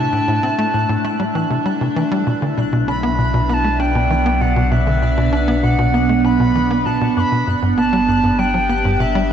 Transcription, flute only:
0.00 1.65 A5 loud
2.88 3.49 B5 loud
3.49 3.55 B5 medium
3.54 3.81 A5 loud
3.80 4.43 G5 medium
4.41 4.73 F#5 medium
4.71 5.65 E5 medium
5.63 6.26 F#5 medium
6.25 6.87 B5 loud
6.86 7.16 A5 medium
7.16 7.48 B5 loud
7.16 7.21 D6 loud
7.78 8.40 A5 loud
8.39 9.02 G5 loud
9.00 9.33 E5 medium

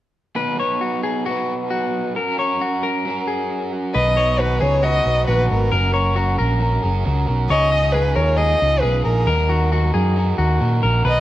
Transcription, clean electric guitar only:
0.37 0.59 B4 medium
0.60 0.82 C#5 medium
0.81 1.03 F#4 medium
1.03 1.25 G#4 medium
1.26 1.68 F#4 medium
1.71 2.13 F#4 medium
2.16 2.38 A#4 medium
2.38 2.61 C#5 medium
2.61 2.83 F#4 medium
2.82 3.25 A#4 medium
3.27 3.72 G#4 medium
3.72 3.95 F#4 medium
3.94 4.16 B4 medium
4.16 4.39 C#5 medium
4.38 4.60 F#4 medium
4.61 4.82 G#4 medium
4.83 5.25 F#4 medium
5.28 5.70 F#4 medium
5.72 5.93 A#4 medium
5.94 6.17 C#5 medium
6.16 6.38 F#4 medium
6.39 6.83 A#4 medium
6.83 7.28 G#4 medium
7.28 7.50 F#4 medium
7.51 7.72 C#5 medium
7.73 7.95 D#5 medium
7.95 8.16 G#4 medium
8.16 8.38 A#4 medium
8.38 8.80 G#4 medium
8.83 9.25 G#4 medium
9.27 9.50 A#4 medium
9.50 9.71 F#4 medium
9.73 9.94 F#4 medium
9.94 10.36 G#4 medium
10.38 10.80 F#4 medium
10.83 11.04 A#4 medium
11.05 11.20 B4 medium

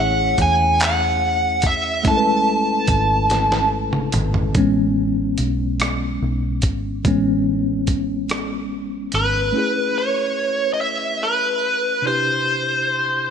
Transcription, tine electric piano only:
0.00 2.00 A3 medium
0.00 2.01 C#4 medium
0.00 2.02 E4 medium
0.00 2.03 G#4 medium
0.00 2.04 C#5 medium
2.03 4.50 A3 medium
2.03 4.51 C#4 medium
2.03 4.52 E4 medium
2.09 4.53 G#3 medium
2.09 2.14 A4 soft
2.17 4.57 B4 medium
4.57 5.77 G#3 soft
4.57 5.77 B3 soft
4.57 5.77 C#4 medium
7.06 9.51 G#3 soft
7.06 9.52 B3 soft
7.06 9.52 C#4 medium
9.52 12.00 A3 soft
9.52 12.00 C#4 soft
9.52 12.01 E4 soft
9.58 12.02 G#4 soft
9.58 12.03 B4 soft
12.02 13.30 C3 soft
12.02 13.30 D4 soft
12.02 13.30 E4 soft
12.07 13.30 G4 soft

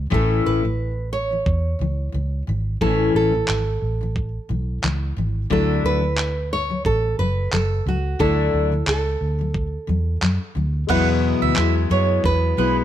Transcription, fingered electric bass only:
0.12 0.39 A1 medium
0.46 1.43 A1 medium
1.46 1.74 E2 medium
1.80 2.08 C#2 medium
2.14 2.41 C#2 medium
2.48 2.76 G#1 medium
2.81 3.09 A1 medium
3.15 3.42 A1 medium
3.49 3.76 G#1 medium
3.82 4.37 A1 medium
4.50 4.77 B1 medium
4.84 5.11 C#2 medium
5.17 5.45 G#1 medium
5.51 5.78 D2 medium
5.84 6.81 D2 medium
6.85 7.13 A1 medium
7.19 7.46 F#1 medium
7.53 7.80 F#1 medium
7.86 8.14 C#2 medium
8.20 8.48 D2 medium
8.54 8.81 D2 medium
8.87 9.15 C#2 medium
9.21 9.76 D2 medium
9.89 10.16 E2 medium
10.22 10.37 F#2 medium
10.56 10.84 D2 medium
10.89 11.32 E2 medium
11.42 11.54 D2 medium
11.57 11.85 E2 medium
11.90 12.18 F#2 medium
12.24 12.52 E2 medium
12.58 12.84 B1 medium

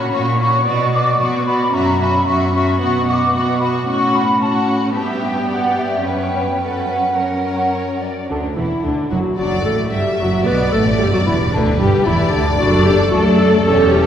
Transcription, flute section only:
0.00 0.13 B5 medium
0.13 0.39 C#6 medium
0.41 0.92 C#6 medium
0.94 1.20 D6 medium
1.19 1.46 C#6 medium
1.46 1.73 B5 medium
1.73 2.00 A#5 medium
1.99 2.26 B5 medium
2.26 2.53 C#6 medium
2.54 3.06 C#6 medium
3.09 3.35 D6 medium
3.34 3.40 C#6 medium
3.60 3.66 B5 medium
3.88 4.14 C#6 medium
4.15 4.41 B5 medium
4.42 4.69 A5 soft
4.69 4.75 F#5 soft
4.95 5.01 A5 soft
5.23 5.50 G5 soft
5.50 5.77 F#5 soft
5.78 6.06 E5 soft
6.07 6.62 G5 soft
6.63 8.02 F#5 soft

